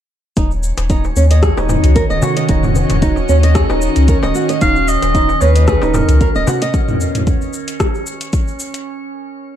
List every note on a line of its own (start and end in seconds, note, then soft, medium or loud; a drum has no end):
0.37 0.72 D#1 medium
0.37 6.74 D#3 medium
0.37 8.88 C#4 medium
0.37 0.51 D#4 medium
0.37 8.87 C#5 medium
0.37 kick loud
0.37 closed hi-hat soft
0.37 shaker soft
0.51 shaker soft
0.61 6.74 F#4 medium
0.61 shaker medium
0.66 6.74 D#5 medium
0.78 1.11 D#1 medium
0.78 closed hi-hat medium
0.78 darbuka ka medium
0.78 shaker soft
0.90 1.04 D#4 medium
0.90 kick medium
0.90 closed hi-hat soft
0.90 shaker soft
0.99 6.74 C#4 medium
1.04 darbuka ka medium
1.04 shaker soft
1.16 1.51 D#2 medium
1.16 1.25 C#4 medium
1.16 shaker medium
1.31 1.42 D#5 medium
1.31 closed hi-hat medium
1.31 shaker soft
1.43 1.57 G#4 medium
1.43 kick loud
1.43 cross-stick medium
1.43 closed hi-hat soft
1.43 shaker soft
1.57 1.76 D#1 medium
1.57 1.95 D#4 medium
1.57 darbuka tek medium
1.57 shaker soft
1.69 mid tom medium
1.69 darbuka ka soft
1.69 darbuka tek medium
1.69 shaker medium
1.84 2.03 C#2 loud
1.84 closed hi-hat medium
1.84 shaker soft
1.95 2.04 A#4 medium
1.95 kick loud
1.95 closed hi-hat soft
1.95 shaker soft
2.10 2.19 D#1 medium
2.10 2.21 D#5 medium
2.10 shaker soft
2.22 2.35 F#4 medium
2.22 darbuka ka medium
2.22 darbuka tek medium
2.22 darbuka dum medium
2.22 shaker medium
2.37 2.48 D#5 medium
2.37 closed hi-hat medium
2.37 shaker soft
2.49 2.84 D#1 loud
2.49 2.63 D#4 medium
2.49 kick loud
2.49 closed hi-hat soft
2.49 shaker soft
2.63 mid tom medium
2.63 darbuka tek soft
2.63 shaker soft
2.75 darbuka dum medium
2.75 shaker medium
2.90 3.24 D#1 medium
2.90 closed hi-hat medium
2.90 mid tom medium
2.90 darbuka ka medium
2.90 shaker soft
3.02 3.16 D#4 medium
3.02 kick loud
3.02 closed hi-hat soft
3.02 shaker soft
3.16 darbuka ka medium
3.16 shaker soft
3.29 3.64 D#2 medium
3.29 3.37 C#4 medium
3.29 shaker medium
3.43 3.55 D#5 medium
3.43 closed hi-hat medium
3.43 shaker soft
3.55 3.69 G#4 medium
3.55 kick loud
3.55 cross-stick medium
3.55 closed hi-hat soft
3.55 shaker soft
3.70 3.89 D#1 medium
3.70 4.07 D#4 medium
3.70 darbuka tek medium
3.70 shaker soft
3.82 shaker medium
3.96 4.15 C#2 loud
3.96 closed hi-hat medium
3.96 shaker soft
4.08 4.17 A#4 medium
4.08 kick loud
4.08 closed hi-hat soft
4.08 shaker soft
4.23 4.32 D#1 medium
4.23 4.34 D#5 loud
4.23 darbuka ka medium
4.23 darbuka tek medium
4.23 shaker soft
4.35 4.48 F#4 medium
4.35 shaker medium
4.49 4.61 D#5 medium
4.49 closed hi-hat medium
4.49 darbuka ka soft
4.49 shaker soft
4.61 4.96 D#1 medium
4.61 4.75 D#4 medium
4.61 4.90 F5 loud
4.61 kick loud
4.61 closed hi-hat soft
4.61 shaker soft
4.76 shaker soft
4.88 5.43 D#5 loud
4.88 shaker medium
5.02 5.36 D#1 loud
5.02 closed hi-hat soft
5.02 darbuka ka medium
5.02 shaker soft
5.15 5.28 D#4 medium
5.15 kick loud
5.15 closed hi-hat soft
5.15 shaker soft
5.29 darbuka ka medium
5.29 shaker soft
5.41 5.76 D#2 medium
5.41 5.50 C#4 medium
5.41 5.96 B4 loud
5.41 shaker medium
5.56 5.67 D#5 medium
5.56 closed hi-hat medium
5.56 shaker soft
5.68 5.82 G#4 medium
5.68 kick loud
5.68 cross-stick medium
5.68 closed hi-hat soft
5.68 shaker soft
5.82 6.01 D#1 medium
5.82 6.20 D#4 medium
5.82 darbuka tek medium
5.82 shaker soft
5.94 6.47 A#4 medium
5.94 mid tom medium
5.94 darbuka ka soft
5.94 darbuka tek medium
5.94 shaker medium
6.09 6.28 C#2 loud
6.09 closed hi-hat medium
6.09 shaker soft
6.21 6.29 A#4 medium
6.21 kick loud
6.21 closed hi-hat soft
6.21 shaker soft
6.35 6.44 D#1 medium
6.35 6.46 D#5 loud
6.35 shaker soft
6.47 6.61 F#4 medium
6.47 darbuka ka medium
6.47 darbuka tek medium
6.47 darbuka dum medium
6.47 shaker medium
6.62 6.73 D#5 medium
6.62 closed hi-hat medium
6.62 shaker soft
6.74 kick loud
6.74 closed hi-hat soft
6.74 shaker soft
6.88 mid tom medium
6.88 shaker soft
7.01 shaker medium
7.15 closed hi-hat soft
7.15 mid tom medium
7.15 shaker soft
7.27 kick loud
7.27 closed hi-hat soft
7.27 shaker soft
7.42 shaker soft
7.53 shaker medium
7.68 closed hi-hat medium
7.68 shaker soft
7.80 kick loud
7.80 cross-stick medium
7.80 closed hi-hat soft
7.80 shaker soft
7.95 shaker soft
8.07 shaker medium
8.21 closed hi-hat medium
8.21 shaker soft
8.33 kick loud
8.33 closed hi-hat soft
8.33 shaker soft
8.48 shaker soft
8.60 shaker medium
8.74 closed hi-hat medium
8.74 shaker soft